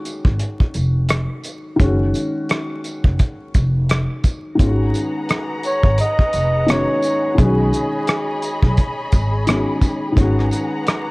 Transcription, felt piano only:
0, 0, Header, 1, 2, 480
1, 0, Start_track
1, 0, Tempo, 697674
1, 1240, Time_signature, 4, 2, 24, 8
1, 7643, End_track
2, 0, Start_track
2, 0, Title_t, "Felt piano"
2, 0, Program_c, 0, 0
2, 0, Control_c, 0, 64, 127
2, 0, Note_on_c, 0, 51, 74
2, 0, Note_on_c, 0, 56, 69
2, 0, Note_on_c, 0, 61, 75
2, 0, Note_on_c, 0, 66, 85
2, 1196, Note_off_c, 0, 51, 0
2, 1205, Note_off_c, 0, 56, 0
2, 1210, Note_on_c, 0, 51, 78
2, 1215, Note_off_c, 0, 61, 0
2, 1226, Note_on_c, 0, 56, 68
2, 1244, Note_on_c, 0, 61, 72
2, 1246, Note_off_c, 0, 66, 0
2, 1250, Control_c, 0, 64, 0
2, 1259, Note_on_c, 0, 66, 86
2, 1372, Control_c, 0, 64, 127
2, 3118, Note_off_c, 0, 51, 0
2, 3126, Note_off_c, 0, 56, 0
2, 3131, Note_on_c, 0, 51, 61
2, 3134, Note_off_c, 0, 61, 0
2, 3142, Note_off_c, 0, 66, 0
2, 3143, Note_on_c, 0, 56, 55
2, 3161, Note_on_c, 0, 61, 55
2, 3168, Control_c, 0, 64, 0
2, 3181, Note_on_c, 0, 65, 59
2, 3222, Note_off_c, 0, 65, 0
2, 3225, Note_on_c, 0, 66, 69
2, 3301, Control_c, 0, 64, 127
2, 4558, Note_off_c, 0, 51, 0
2, 4564, Note_off_c, 0, 56, 0
2, 4573, Note_off_c, 0, 61, 0
2, 4584, Note_on_c, 0, 51, 53
2, 4589, Note_on_c, 0, 56, 43
2, 4595, Note_off_c, 0, 66, 0
2, 4599, Note_on_c, 0, 61, 50
2, 4605, Note_on_c, 0, 66, 57
2, 5044, Note_off_c, 0, 51, 0
2, 5054, Note_on_c, 0, 51, 60
2, 5060, Note_off_c, 0, 56, 0
2, 5070, Note_on_c, 0, 56, 58
2, 5080, Note_off_c, 0, 61, 0
2, 5083, Note_off_c, 0, 66, 0
2, 5089, Control_c, 0, 64, 0
2, 5091, Note_on_c, 0, 61, 61
2, 5107, Note_on_c, 0, 66, 72
2, 5199, Control_c, 0, 64, 127
2, 6480, Note_off_c, 0, 51, 0
2, 6488, Note_off_c, 0, 56, 0
2, 6498, Note_off_c, 0, 61, 0
2, 6506, Note_off_c, 0, 66, 0
2, 6515, Note_on_c, 0, 51, 50
2, 6526, Note_on_c, 0, 56, 47
2, 6534, Note_on_c, 0, 61, 50
2, 6545, Note_on_c, 0, 66, 53
2, 6954, Note_off_c, 0, 51, 0
2, 6964, Note_on_c, 0, 51, 64
2, 6973, Note_off_c, 0, 56, 0
2, 6983, Note_on_c, 0, 56, 62
2, 6990, Note_off_c, 0, 61, 0
2, 7000, Note_on_c, 0, 61, 59
2, 7008, Note_off_c, 0, 66, 0
2, 7008, Control_c, 0, 64, 0
2, 7018, Note_on_c, 0, 66, 74
2, 7137, Control_c, 0, 64, 127
2, 7643, Note_off_c, 0, 51, 0
2, 7643, Note_off_c, 0, 56, 0
2, 7643, Note_off_c, 0, 61, 0
2, 7643, Note_off_c, 0, 66, 0
2, 7643, End_track
0, 0, End_of_file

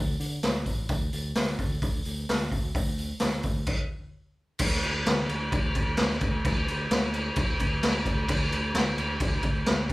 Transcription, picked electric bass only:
0, 0, Header, 1, 2, 480
1, 0, Start_track
1, 0, Tempo, 461538
1, 931, Time_signature, 4, 2, 24, 8
1, 10326, End_track
2, 0, Start_track
2, 0, Title_t, "Picked electric bass"
2, 0, Program_c, 0, 34
2, 0, Note_on_c, 0, 38, 79
2, 160, Note_off_c, 0, 38, 0
2, 207, Note_on_c, 0, 50, 79
2, 401, Note_off_c, 0, 50, 0
2, 462, Note_on_c, 0, 38, 83
2, 650, Note_off_c, 0, 38, 0
2, 689, Note_on_c, 0, 33, 84
2, 883, Note_off_c, 0, 33, 0
2, 929, Note_on_c, 0, 38, 90
2, 1124, Note_off_c, 0, 38, 0
2, 1178, Note_on_c, 0, 38, 83
2, 1370, Note_off_c, 0, 38, 0
2, 1411, Note_on_c, 0, 38, 85
2, 1606, Note_off_c, 0, 38, 0
2, 1655, Note_on_c, 0, 38, 85
2, 1849, Note_off_c, 0, 38, 0
2, 1892, Note_on_c, 0, 38, 81
2, 2088, Note_off_c, 0, 38, 0
2, 2145, Note_on_c, 0, 38, 74
2, 2336, Note_off_c, 0, 38, 0
2, 2391, Note_on_c, 0, 38, 80
2, 2580, Note_off_c, 0, 38, 0
2, 2616, Note_on_c, 0, 38, 83
2, 2811, Note_off_c, 0, 38, 0
2, 2855, Note_on_c, 0, 38, 88
2, 3244, Note_off_c, 0, 38, 0
2, 3347, Note_on_c, 0, 38, 85
2, 3538, Note_off_c, 0, 38, 0
2, 3581, Note_on_c, 0, 38, 78
2, 3775, Note_off_c, 0, 38, 0
2, 4785, Note_on_c, 0, 38, 93
2, 4987, Note_off_c, 0, 38, 0
2, 5026, Note_on_c, 0, 38, 85
2, 5228, Note_off_c, 0, 38, 0
2, 5260, Note_on_c, 0, 38, 91
2, 5464, Note_off_c, 0, 38, 0
2, 5496, Note_on_c, 0, 38, 88
2, 5702, Note_off_c, 0, 38, 0
2, 5742, Note_on_c, 0, 38, 93
2, 5945, Note_off_c, 0, 38, 0
2, 5983, Note_on_c, 0, 38, 89
2, 6185, Note_off_c, 0, 38, 0
2, 6224, Note_on_c, 0, 38, 87
2, 6426, Note_off_c, 0, 38, 0
2, 6461, Note_on_c, 0, 38, 85
2, 6663, Note_off_c, 0, 38, 0
2, 6705, Note_on_c, 0, 38, 94
2, 6906, Note_off_c, 0, 38, 0
2, 6936, Note_on_c, 0, 38, 87
2, 7140, Note_off_c, 0, 38, 0
2, 7184, Note_on_c, 0, 38, 94
2, 7586, Note_off_c, 0, 38, 0
2, 7659, Note_on_c, 0, 38, 91
2, 7861, Note_off_c, 0, 38, 0
2, 7902, Note_on_c, 0, 38, 89
2, 8102, Note_off_c, 0, 38, 0
2, 8144, Note_on_c, 0, 38, 88
2, 8343, Note_off_c, 0, 38, 0
2, 8381, Note_on_c, 0, 38, 89
2, 8581, Note_off_c, 0, 38, 0
2, 8618, Note_on_c, 0, 38, 97
2, 8818, Note_off_c, 0, 38, 0
2, 8855, Note_on_c, 0, 38, 89
2, 9056, Note_off_c, 0, 38, 0
2, 9093, Note_on_c, 0, 38, 94
2, 9295, Note_off_c, 0, 38, 0
2, 9335, Note_on_c, 0, 38, 89
2, 9535, Note_off_c, 0, 38, 0
2, 9575, Note_on_c, 0, 38, 88
2, 9775, Note_off_c, 0, 38, 0
2, 9811, Note_on_c, 0, 38, 84
2, 10012, Note_off_c, 0, 38, 0
2, 10073, Note_on_c, 0, 38, 91
2, 10265, Note_off_c, 0, 38, 0
2, 10291, Note_on_c, 0, 38, 87
2, 10326, Note_off_c, 0, 38, 0
2, 10326, End_track
0, 0, End_of_file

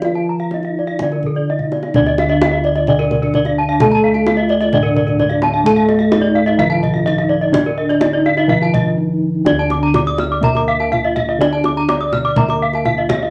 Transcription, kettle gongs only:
0, 0, Header, 1, 2, 480
1, 0, Start_track
1, 0, Tempo, 485830
1, 35, Time_signature, 4, 2, 24, 8
1, 1473, Tempo, 464396
1, 7713, Tempo, 485044
1, 13426, End_track
2, 0, Start_track
2, 0, Title_t, "Kettle gongs"
2, 0, Program_c, 0, 14
2, 0, Note_on_c, 0, 53, 58
2, 39, Note_on_c, 0, 65, 52
2, 484, Note_off_c, 0, 53, 0
2, 524, Note_on_c, 0, 63, 38
2, 603, Note_off_c, 0, 63, 0
2, 998, Note_on_c, 0, 50, 45
2, 1436, Note_off_c, 0, 65, 0
2, 1473, Note_on_c, 0, 63, 35
2, 1556, Note_off_c, 0, 63, 0
2, 1949, Note_on_c, 0, 62, 75
2, 2002, Note_on_c, 0, 38, 99
2, 2390, Note_off_c, 0, 50, 0
2, 2432, Note_on_c, 0, 63, 43
2, 2514, Note_off_c, 0, 63, 0
2, 3345, Note_off_c, 0, 62, 0
2, 3387, Note_on_c, 0, 63, 46
2, 3469, Note_off_c, 0, 63, 0
2, 3876, Note_on_c, 0, 69, 65
2, 4348, Note_on_c, 0, 63, 53
2, 4430, Note_off_c, 0, 63, 0
2, 4804, Note_off_c, 0, 38, 0
2, 4827, Note_on_c, 0, 45, 70
2, 5264, Note_off_c, 0, 69, 0
2, 5300, Note_on_c, 0, 63, 49
2, 5382, Note_off_c, 0, 63, 0
2, 5782, Note_on_c, 0, 69, 66
2, 6218, Note_off_c, 0, 45, 0
2, 6254, Note_on_c, 0, 63, 53
2, 6336, Note_off_c, 0, 63, 0
2, 6737, Note_on_c, 0, 50, 65
2, 7186, Note_off_c, 0, 69, 0
2, 7223, Note_on_c, 0, 63, 47
2, 7305, Note_off_c, 0, 63, 0
2, 7710, Note_on_c, 0, 62, 73
2, 8144, Note_off_c, 0, 50, 0
2, 8180, Note_on_c, 0, 63, 51
2, 8260, Note_off_c, 0, 63, 0
2, 8656, Note_on_c, 0, 50, 60
2, 9095, Note_off_c, 0, 62, 0
2, 9146, Note_on_c, 0, 63, 47
2, 9226, Note_off_c, 0, 63, 0
2, 9624, Note_on_c, 0, 62, 56
2, 9673, Note_on_c, 0, 38, 86
2, 10057, Note_off_c, 0, 50, 0
2, 11027, Note_off_c, 0, 62, 0
2, 11060, Note_on_c, 0, 63, 39
2, 11139, Note_off_c, 0, 63, 0
2, 11533, Note_on_c, 0, 62, 49
2, 12033, Note_on_c, 0, 63, 41
2, 12112, Note_off_c, 0, 63, 0
2, 12497, Note_off_c, 0, 38, 0
2, 12511, Note_on_c, 0, 50, 48
2, 12945, Note_off_c, 0, 62, 0
2, 12990, Note_on_c, 0, 63, 43
2, 13069, Note_off_c, 0, 63, 0
2, 13426, Note_off_c, 0, 50, 0
2, 13426, End_track
0, 0, End_of_file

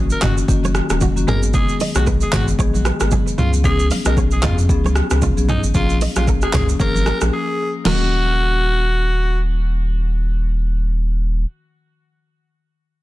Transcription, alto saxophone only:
0, 0, Header, 1, 2, 480
1, 0, Start_track
1, 0, Key_signature, -6, "minor"
1, 0, Tempo, 526316
1, 1402, Time_signature, 4, 2, 24, 8
1, 11881, End_track
2, 0, Start_track
2, 0, Title_t, "Alto saxophone"
2, 0, Program_c, 0, 65
2, 109, Note_on_c, 0, 70, 77
2, 192, Note_off_c, 0, 70, 0
2, 210, Note_on_c, 0, 66, 75
2, 325, Note_off_c, 0, 66, 0
2, 1171, Note_on_c, 0, 70, 80
2, 1285, Note_off_c, 0, 70, 0
2, 1409, Note_on_c, 0, 68, 102
2, 1610, Note_off_c, 0, 68, 0
2, 1789, Note_on_c, 0, 66, 81
2, 1871, Note_off_c, 0, 66, 0
2, 2030, Note_on_c, 0, 68, 79
2, 2112, Note_off_c, 0, 68, 0
2, 2129, Note_on_c, 0, 66, 87
2, 2245, Note_off_c, 0, 66, 0
2, 3089, Note_on_c, 0, 65, 79
2, 3204, Note_off_c, 0, 65, 0
2, 3329, Note_on_c, 0, 68, 117
2, 3530, Note_off_c, 0, 68, 0
2, 3706, Note_on_c, 0, 70, 85
2, 3790, Note_off_c, 0, 70, 0
2, 3946, Note_on_c, 0, 68, 78
2, 4030, Note_off_c, 0, 68, 0
2, 4048, Note_on_c, 0, 65, 89
2, 4163, Note_off_c, 0, 65, 0
2, 5008, Note_on_c, 0, 63, 85
2, 5124, Note_off_c, 0, 63, 0
2, 5247, Note_on_c, 0, 65, 105
2, 5449, Note_off_c, 0, 65, 0
2, 5627, Note_on_c, 0, 65, 92
2, 5710, Note_off_c, 0, 65, 0
2, 5867, Note_on_c, 0, 68, 78
2, 5950, Note_off_c, 0, 68, 0
2, 5969, Note_on_c, 0, 68, 82
2, 6084, Note_off_c, 0, 68, 0
2, 6209, Note_on_c, 0, 70, 114
2, 6562, Note_off_c, 0, 70, 0
2, 6689, Note_on_c, 0, 68, 88
2, 7042, Note_off_c, 0, 68, 0
2, 7169, Note_on_c, 0, 66, 99
2, 8569, Note_off_c, 0, 66, 0
2, 11881, End_track
0, 0, End_of_file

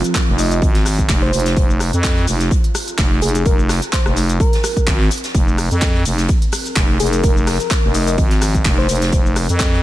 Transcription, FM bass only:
0, 0, Header, 1, 2, 480
1, 0, Start_track
1, 0, Key_signature, -4, "minor"
1, 0, Tempo, 472441
1, 1591, Time_signature, 4, 2, 24, 8
1, 9986, End_track
2, 0, Start_track
2, 0, Title_t, "FM bass"
2, 0, Program_c, 0, 39
2, 283, Note_on_c, 0, 29, 99
2, 614, Note_off_c, 0, 29, 0
2, 631, Note_on_c, 0, 32, 96
2, 1094, Note_off_c, 0, 32, 0
2, 1111, Note_on_c, 0, 29, 100
2, 1334, Note_off_c, 0, 29, 0
2, 1351, Note_on_c, 0, 29, 97
2, 1574, Note_off_c, 0, 29, 0
2, 1591, Note_on_c, 0, 29, 98
2, 1942, Note_off_c, 0, 29, 0
2, 1963, Note_on_c, 0, 41, 99
2, 2294, Note_off_c, 0, 41, 0
2, 2312, Note_on_c, 0, 29, 95
2, 2535, Note_off_c, 0, 29, 0
2, 3032, Note_on_c, 0, 29, 101
2, 3254, Note_off_c, 0, 29, 0
2, 3271, Note_on_c, 0, 29, 91
2, 3494, Note_off_c, 0, 29, 0
2, 3511, Note_on_c, 0, 29, 98
2, 3862, Note_off_c, 0, 29, 0
2, 4123, Note_on_c, 0, 29, 100
2, 4454, Note_off_c, 0, 29, 0
2, 4951, Note_on_c, 0, 32, 102
2, 5174, Note_off_c, 0, 32, 0
2, 5431, Note_on_c, 0, 29, 95
2, 5782, Note_off_c, 0, 29, 0
2, 5803, Note_on_c, 0, 41, 99
2, 6134, Note_off_c, 0, 41, 0
2, 6152, Note_on_c, 0, 29, 95
2, 6374, Note_off_c, 0, 29, 0
2, 6872, Note_on_c, 0, 29, 100
2, 7094, Note_off_c, 0, 29, 0
2, 7112, Note_on_c, 0, 29, 91
2, 7334, Note_off_c, 0, 29, 0
2, 7352, Note_on_c, 0, 29, 96
2, 7702, Note_off_c, 0, 29, 0
2, 7963, Note_on_c, 0, 29, 99
2, 8294, Note_off_c, 0, 29, 0
2, 8312, Note_on_c, 0, 32, 97
2, 8774, Note_off_c, 0, 32, 0
2, 8792, Note_on_c, 0, 29, 98
2, 9014, Note_off_c, 0, 29, 0
2, 9032, Note_on_c, 0, 29, 93
2, 9254, Note_off_c, 0, 29, 0
2, 9272, Note_on_c, 0, 29, 93
2, 9622, Note_off_c, 0, 29, 0
2, 9643, Note_on_c, 0, 41, 97
2, 9974, Note_off_c, 0, 41, 0
2, 9986, End_track
0, 0, End_of_file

